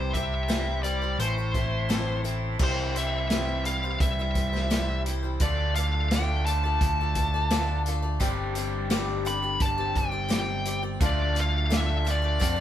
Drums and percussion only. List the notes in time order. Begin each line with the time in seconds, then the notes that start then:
0.14 kick, closed hi-hat
0.49 snare, closed hi-hat
0.84 closed hi-hat
1.20 closed hi-hat
1.54 kick, closed hi-hat
1.90 snare, closed hi-hat
2.25 closed hi-hat
2.59 kick, crash
2.96 closed hi-hat
3.30 snare, closed hi-hat
3.65 closed hi-hat
4.00 kick, closed hi-hat
4.35 kick, closed hi-hat
4.55 snare
4.71 snare, closed hi-hat
5.06 closed hi-hat
5.40 kick, closed hi-hat
5.75 closed hi-hat
6.11 snare, closed hi-hat
6.46 closed hi-hat
6.81 kick, closed hi-hat
7.15 kick, closed hi-hat
7.50 snare, closed hi-hat
7.86 closed hi-hat
8.21 kick, closed hi-hat
8.55 closed hi-hat
8.90 snare, closed hi-hat
9.26 closed hi-hat
9.60 kick, closed hi-hat
9.96 kick, closed hi-hat
10.30 snare, closed hi-hat
10.65 closed hi-hat
11.00 kick, closed hi-hat
11.36 closed hi-hat
11.72 snare, closed hi-hat
12.07 closed hi-hat
12.41 kick, closed hi-hat